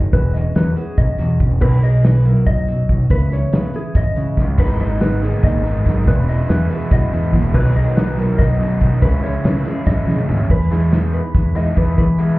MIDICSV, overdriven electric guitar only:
0, 0, Header, 1, 2, 480
1, 0, Start_track
1, 0, Key_signature, 4, "major"
1, 0, Tempo, 423131
1, 154, Time_signature, 7, 3, 24, 8
1, 14054, End_track
2, 0, Start_track
2, 0, Title_t, "Overdriven electric guitar"
2, 0, Program_c, 0, 29
2, 5197, Note_on_c, 0, 44, 88
2, 5202, Note_on_c, 0, 51, 80
2, 5211, Note_on_c, 0, 56, 86
2, 5223, Note_on_c, 0, 59, 85
2, 5229, Note_on_c, 0, 63, 99
2, 5424, Note_off_c, 0, 63, 0
2, 5438, Note_on_c, 0, 63, 77
2, 5449, Note_off_c, 0, 59, 0
2, 5454, Note_on_c, 0, 59, 61
2, 5470, Note_off_c, 0, 56, 0
2, 5475, Note_on_c, 0, 56, 55
2, 5672, Note_off_c, 0, 51, 0
2, 5683, Note_off_c, 0, 44, 0
2, 5686, Note_on_c, 0, 51, 78
2, 5692, Note_off_c, 0, 56, 0
2, 5696, Note_on_c, 0, 56, 76
2, 5706, Note_off_c, 0, 59, 0
2, 5708, Note_off_c, 0, 63, 0
2, 5710, Note_on_c, 0, 59, 72
2, 5722, Note_on_c, 0, 63, 80
2, 5910, Note_off_c, 0, 63, 0
2, 5922, Note_off_c, 0, 59, 0
2, 5923, Note_on_c, 0, 63, 80
2, 5924, Note_off_c, 0, 56, 0
2, 5927, Note_on_c, 0, 59, 82
2, 5932, Note_off_c, 0, 51, 0
2, 5938, Note_on_c, 0, 56, 85
2, 5946, Note_on_c, 0, 51, 78
2, 5952, Note_on_c, 0, 44, 69
2, 6141, Note_off_c, 0, 51, 0
2, 6155, Note_on_c, 0, 51, 66
2, 6161, Note_off_c, 0, 56, 0
2, 6175, Note_on_c, 0, 56, 74
2, 6176, Note_off_c, 0, 59, 0
2, 6181, Note_off_c, 0, 63, 0
2, 6181, Note_on_c, 0, 59, 76
2, 6195, Note_on_c, 0, 63, 82
2, 6382, Note_off_c, 0, 63, 0
2, 6396, Note_on_c, 0, 63, 85
2, 6405, Note_off_c, 0, 59, 0
2, 6406, Note_off_c, 0, 56, 0
2, 6407, Note_off_c, 0, 51, 0
2, 6409, Note_on_c, 0, 59, 74
2, 6417, Note_off_c, 0, 44, 0
2, 6420, Note_on_c, 0, 56, 79
2, 6421, Note_on_c, 0, 51, 74
2, 6431, Note_on_c, 0, 44, 62
2, 6635, Note_off_c, 0, 51, 0
2, 6648, Note_on_c, 0, 51, 69
2, 6652, Note_off_c, 0, 56, 0
2, 6666, Note_on_c, 0, 56, 70
2, 6671, Note_off_c, 0, 59, 0
2, 6672, Note_off_c, 0, 63, 0
2, 6676, Note_on_c, 0, 59, 78
2, 6686, Note_on_c, 0, 63, 74
2, 6874, Note_off_c, 0, 51, 0
2, 6882, Note_off_c, 0, 56, 0
2, 6885, Note_off_c, 0, 44, 0
2, 6888, Note_on_c, 0, 52, 80
2, 6892, Note_off_c, 0, 63, 0
2, 6900, Note_on_c, 0, 56, 82
2, 6908, Note_off_c, 0, 59, 0
2, 6912, Note_on_c, 0, 59, 95
2, 6921, Note_on_c, 0, 64, 95
2, 7124, Note_off_c, 0, 64, 0
2, 7138, Note_on_c, 0, 64, 68
2, 7147, Note_off_c, 0, 59, 0
2, 7151, Note_on_c, 0, 59, 70
2, 7155, Note_off_c, 0, 56, 0
2, 7168, Note_on_c, 0, 56, 56
2, 7353, Note_off_c, 0, 52, 0
2, 7360, Note_off_c, 0, 56, 0
2, 7367, Note_on_c, 0, 52, 83
2, 7373, Note_on_c, 0, 56, 83
2, 7381, Note_off_c, 0, 59, 0
2, 7382, Note_off_c, 0, 64, 0
2, 7385, Note_on_c, 0, 59, 80
2, 7395, Note_on_c, 0, 64, 83
2, 7579, Note_off_c, 0, 64, 0
2, 7593, Note_on_c, 0, 64, 89
2, 7601, Note_off_c, 0, 56, 0
2, 7602, Note_off_c, 0, 59, 0
2, 7607, Note_on_c, 0, 59, 84
2, 7615, Note_on_c, 0, 56, 78
2, 7616, Note_off_c, 0, 52, 0
2, 7630, Note_on_c, 0, 52, 76
2, 7826, Note_off_c, 0, 52, 0
2, 7840, Note_on_c, 0, 52, 73
2, 7845, Note_off_c, 0, 56, 0
2, 7858, Note_on_c, 0, 56, 78
2, 7864, Note_off_c, 0, 59, 0
2, 7866, Note_off_c, 0, 64, 0
2, 7868, Note_on_c, 0, 59, 75
2, 7880, Note_on_c, 0, 64, 76
2, 8069, Note_off_c, 0, 64, 0
2, 8083, Note_on_c, 0, 64, 92
2, 8091, Note_off_c, 0, 59, 0
2, 8094, Note_off_c, 0, 56, 0
2, 8096, Note_on_c, 0, 59, 84
2, 8104, Note_off_c, 0, 52, 0
2, 8108, Note_on_c, 0, 56, 71
2, 8118, Note_on_c, 0, 52, 69
2, 8304, Note_off_c, 0, 52, 0
2, 8317, Note_off_c, 0, 56, 0
2, 8318, Note_on_c, 0, 52, 71
2, 8330, Note_on_c, 0, 56, 79
2, 8334, Note_off_c, 0, 64, 0
2, 8336, Note_off_c, 0, 59, 0
2, 8340, Note_on_c, 0, 59, 78
2, 8347, Note_on_c, 0, 64, 75
2, 8547, Note_off_c, 0, 52, 0
2, 8553, Note_off_c, 0, 56, 0
2, 8555, Note_on_c, 0, 47, 79
2, 8562, Note_off_c, 0, 64, 0
2, 8571, Note_on_c, 0, 51, 84
2, 8576, Note_on_c, 0, 54, 90
2, 8580, Note_off_c, 0, 59, 0
2, 8584, Note_on_c, 0, 59, 89
2, 8586, Note_on_c, 0, 63, 103
2, 8784, Note_off_c, 0, 63, 0
2, 8797, Note_on_c, 0, 63, 72
2, 8818, Note_off_c, 0, 59, 0
2, 8821, Note_off_c, 0, 54, 0
2, 8822, Note_on_c, 0, 59, 67
2, 8834, Note_on_c, 0, 54, 58
2, 9036, Note_off_c, 0, 51, 0
2, 9039, Note_off_c, 0, 47, 0
2, 9047, Note_off_c, 0, 54, 0
2, 9050, Note_on_c, 0, 51, 80
2, 9061, Note_on_c, 0, 54, 72
2, 9067, Note_off_c, 0, 59, 0
2, 9070, Note_off_c, 0, 63, 0
2, 9071, Note_on_c, 0, 59, 81
2, 9084, Note_on_c, 0, 63, 82
2, 9277, Note_off_c, 0, 63, 0
2, 9291, Note_off_c, 0, 54, 0
2, 9291, Note_off_c, 0, 59, 0
2, 9291, Note_on_c, 0, 63, 93
2, 9295, Note_on_c, 0, 59, 94
2, 9299, Note_off_c, 0, 51, 0
2, 9305, Note_on_c, 0, 54, 78
2, 9313, Note_on_c, 0, 51, 78
2, 9320, Note_on_c, 0, 47, 79
2, 9515, Note_off_c, 0, 51, 0
2, 9529, Note_on_c, 0, 51, 69
2, 9534, Note_off_c, 0, 54, 0
2, 9547, Note_on_c, 0, 54, 75
2, 9548, Note_off_c, 0, 59, 0
2, 9551, Note_off_c, 0, 63, 0
2, 9553, Note_on_c, 0, 59, 77
2, 9564, Note_on_c, 0, 63, 82
2, 9747, Note_off_c, 0, 63, 0
2, 9760, Note_on_c, 0, 63, 92
2, 9767, Note_off_c, 0, 54, 0
2, 9772, Note_off_c, 0, 59, 0
2, 9773, Note_off_c, 0, 51, 0
2, 9777, Note_on_c, 0, 59, 79
2, 9781, Note_off_c, 0, 47, 0
2, 9781, Note_on_c, 0, 54, 80
2, 9787, Note_on_c, 0, 51, 81
2, 9795, Note_on_c, 0, 47, 67
2, 9984, Note_off_c, 0, 51, 0
2, 9995, Note_off_c, 0, 54, 0
2, 9997, Note_on_c, 0, 51, 81
2, 10009, Note_on_c, 0, 54, 71
2, 10013, Note_off_c, 0, 59, 0
2, 10014, Note_off_c, 0, 63, 0
2, 10018, Note_on_c, 0, 59, 78
2, 10028, Note_on_c, 0, 63, 75
2, 10224, Note_off_c, 0, 51, 0
2, 10230, Note_off_c, 0, 54, 0
2, 10233, Note_on_c, 0, 49, 83
2, 10239, Note_off_c, 0, 63, 0
2, 10243, Note_off_c, 0, 47, 0
2, 10245, Note_on_c, 0, 56, 88
2, 10250, Note_off_c, 0, 59, 0
2, 10255, Note_on_c, 0, 61, 88
2, 10262, Note_on_c, 0, 64, 101
2, 10449, Note_off_c, 0, 64, 0
2, 10463, Note_on_c, 0, 64, 72
2, 10471, Note_off_c, 0, 61, 0
2, 10481, Note_off_c, 0, 56, 0
2, 10484, Note_on_c, 0, 61, 62
2, 10494, Note_on_c, 0, 56, 56
2, 10691, Note_off_c, 0, 49, 0
2, 10705, Note_on_c, 0, 49, 64
2, 10707, Note_off_c, 0, 56, 0
2, 10717, Note_off_c, 0, 61, 0
2, 10721, Note_on_c, 0, 56, 70
2, 10724, Note_off_c, 0, 64, 0
2, 10730, Note_on_c, 0, 61, 74
2, 10737, Note_on_c, 0, 64, 89
2, 10926, Note_off_c, 0, 64, 0
2, 10936, Note_off_c, 0, 61, 0
2, 10939, Note_on_c, 0, 64, 88
2, 10949, Note_off_c, 0, 56, 0
2, 10950, Note_on_c, 0, 61, 83
2, 10960, Note_off_c, 0, 49, 0
2, 10962, Note_on_c, 0, 56, 80
2, 10974, Note_on_c, 0, 49, 70
2, 11166, Note_off_c, 0, 49, 0
2, 11178, Note_off_c, 0, 56, 0
2, 11180, Note_on_c, 0, 49, 75
2, 11186, Note_off_c, 0, 61, 0
2, 11191, Note_on_c, 0, 56, 78
2, 11200, Note_on_c, 0, 61, 73
2, 11203, Note_off_c, 0, 64, 0
2, 11216, Note_on_c, 0, 64, 78
2, 11419, Note_off_c, 0, 64, 0
2, 11433, Note_on_c, 0, 64, 83
2, 11434, Note_off_c, 0, 61, 0
2, 11444, Note_off_c, 0, 56, 0
2, 11447, Note_on_c, 0, 61, 73
2, 11451, Note_off_c, 0, 49, 0
2, 11457, Note_on_c, 0, 56, 83
2, 11465, Note_on_c, 0, 49, 65
2, 11648, Note_off_c, 0, 49, 0
2, 11662, Note_on_c, 0, 49, 67
2, 11668, Note_off_c, 0, 56, 0
2, 11671, Note_off_c, 0, 61, 0
2, 11681, Note_off_c, 0, 64, 0
2, 11681, Note_on_c, 0, 56, 73
2, 11685, Note_on_c, 0, 61, 78
2, 11695, Note_on_c, 0, 64, 79
2, 11894, Note_off_c, 0, 49, 0
2, 11904, Note_off_c, 0, 56, 0
2, 11905, Note_off_c, 0, 61, 0
2, 11910, Note_off_c, 0, 64, 0
2, 12150, Note_on_c, 0, 59, 73
2, 12151, Note_on_c, 0, 64, 83
2, 12162, Note_on_c, 0, 56, 67
2, 12165, Note_on_c, 0, 52, 69
2, 12368, Note_off_c, 0, 52, 0
2, 12378, Note_off_c, 0, 56, 0
2, 12380, Note_off_c, 0, 59, 0
2, 12382, Note_on_c, 0, 52, 63
2, 12383, Note_off_c, 0, 64, 0
2, 12392, Note_on_c, 0, 56, 64
2, 12393, Note_on_c, 0, 59, 64
2, 12397, Note_on_c, 0, 64, 80
2, 12699, Note_off_c, 0, 52, 0
2, 12704, Note_off_c, 0, 56, 0
2, 12705, Note_off_c, 0, 59, 0
2, 12706, Note_off_c, 0, 64, 0
2, 13106, Note_on_c, 0, 64, 82
2, 13112, Note_on_c, 0, 59, 67
2, 13113, Note_on_c, 0, 56, 76
2, 13118, Note_on_c, 0, 52, 74
2, 13337, Note_off_c, 0, 52, 0
2, 13341, Note_off_c, 0, 56, 0
2, 13342, Note_off_c, 0, 59, 0
2, 13348, Note_off_c, 0, 64, 0
2, 13351, Note_on_c, 0, 52, 59
2, 13355, Note_on_c, 0, 56, 65
2, 13355, Note_on_c, 0, 59, 70
2, 13364, Note_on_c, 0, 64, 67
2, 13662, Note_off_c, 0, 52, 0
2, 13664, Note_off_c, 0, 56, 0
2, 13664, Note_off_c, 0, 59, 0
2, 13669, Note_off_c, 0, 64, 0
2, 13825, Note_on_c, 0, 64, 79
2, 13837, Note_on_c, 0, 59, 82
2, 13844, Note_on_c, 0, 52, 67
2, 13844, Note_on_c, 0, 56, 71
2, 14051, Note_off_c, 0, 52, 0
2, 14052, Note_off_c, 0, 56, 0
2, 14054, Note_off_c, 0, 59, 0
2, 14054, Note_off_c, 0, 64, 0
2, 14054, End_track
0, 0, End_of_file